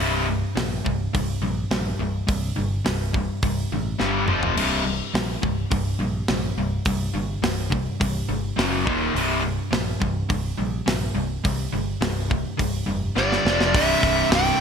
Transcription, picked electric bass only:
0.00 C1
0.57 A#1
0.86 C1
1.15 C1
1.42 A#1
1.71 A#1
2.00 C1
2.29 C2
2.59 G1
2.86 C1
3.43 C1
3.72 A1
4.00 G1
4.30 F1
4.57 C1
5.14 A#1
5.43 C1
5.72 C1
6.00 A#1
6.29 A#1
6.57 C1
6.86 C2
7.14 G1
7.43 C1
8.01 C1
8.29 G1
8.58 F#1
8.87 D#1
9.15 C1
9.72 A#1
10.02 C1
10.30 C1
10.59 A#1
10.88 A#1
11.16 C1
11.45 C2
11.73 G1
12.01 C1
12.59 C1
12.88 F1
13.16 G1
13.45 F1
13.74 C1
14.04 C1
14.31 C1

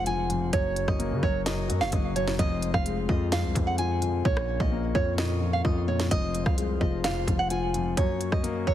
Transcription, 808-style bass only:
Already playing: F1
0.53 F#1
0.88 F#1
1.11 C#3
1.23 F#1
1.69 F#2
1.81 F#1
1.93 F#1
2.39 F1
2.74 F1
3.09 F2
3.44 C2
3.55 F2
4.25 A#1
4.60 A#1
4.95 F2
5.65 F2
6.11 F1
6.46 C2
6.81 F1
7.28 F1

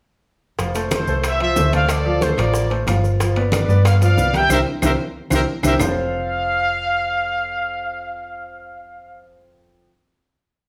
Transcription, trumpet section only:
0.93 A4 C5
1.27 C5 E5
1.41 C5 E5
1.73 D5 F5
1.89 A4 D5
2.22 A4 C5
2.38 A#4 D5
3.54 B4 D5
3.87 D5 F5
4.03 D5 F5
4.36 E5 G5
4.51 A#4 C5 E5
4.84 A#4 C5 E5
5.33 A#4 C5 E5
5.65 A#4 C5 E5
5.82 F5

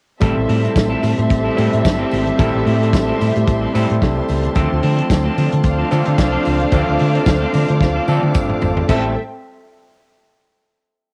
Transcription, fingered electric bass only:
0.22 A1
0.37 A1
0.49 A2
0.76 A1
1.03 A2
1.19 A2
1.31 A1
1.58 A2
1.74 A2
1.85 G1
2.13 G#1
2.39 A1
2.55 A1
2.67 A2
2.94 A1
3.21 A2
3.36 A2
3.48 A1
3.75 A2
3.91 A2
4.02 C2
4.29 C#2
4.56 D2
4.72 D2
4.83 D3
5.10 D2
5.38 D3
5.53 D3
5.65 D2
5.92 D3
6.07 D3
6.19 C2
6.47 C#2
6.73 D2
6.89 D2
7.01 D3
7.27 D2
7.55 D3
7.70 D3
7.81 D2
8.08 D3
8.24 D3
8.35 G1
8.62 G#1
8.89 A1

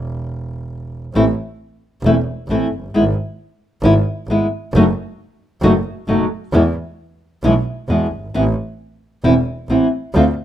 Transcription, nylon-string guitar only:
1.15 E3 A3 C4 E4
2.06 E3 A3 C4 E4
2.50 E3 A3 C4 E4
2.94 G#3 B3 E4
3.84 G#3 B3 E4
4.30 G#3 B3 E4
4.75 B2 F#3 A3 D#4 F#4
5.63 B2 F#3 A3 D#4 F#4
6.08 B2 F#3 A3 D#4 F#4
6.53 B2 E3 G#3 B3 E4
7.44 B2 E3 G#3 B3 E4
7.89 B2 E3 G#3 B3 E4
8.34 E3 B3 C4 E4
9.24 E3 B3 C4 E4
9.70 E3 B3 C4 E4
10.15 D3 A3 C4 F4

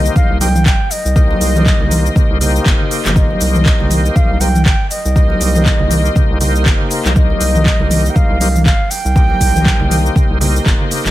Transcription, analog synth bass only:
0.30 C2
0.66 G1
1.05 C2
1.41 C2
1.80 C2
2.30 C2
2.66 G1
3.05 G1
3.41 C2
3.80 C2
4.30 C2
4.66 G1
5.05 C2
5.41 C2
5.80 C2
6.30 C2
6.66 G1
7.05 C2
7.41 C2
7.80 C2
8.30 C2
8.66 G1
9.05 C2
9.41 C2
9.81 C2
10.30 C2
10.66 G1
11.05 G1

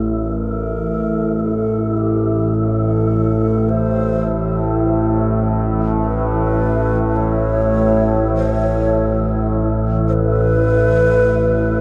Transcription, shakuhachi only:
0.22 A#4
1.40 A4
1.97 G4
2.55 A4
3.69 C5
6.01 B4
7.17 C#5
8.35 C5
8.49 C#5
10.08 C5
10.13 B4

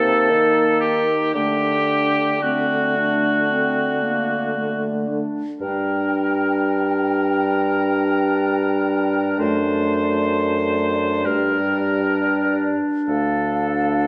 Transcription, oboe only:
Already playing: A4
0.80 G4
1.34 G4
2.42 F#4
5.61 A#4
9.39 C5
11.26 A#4
13.07 A4

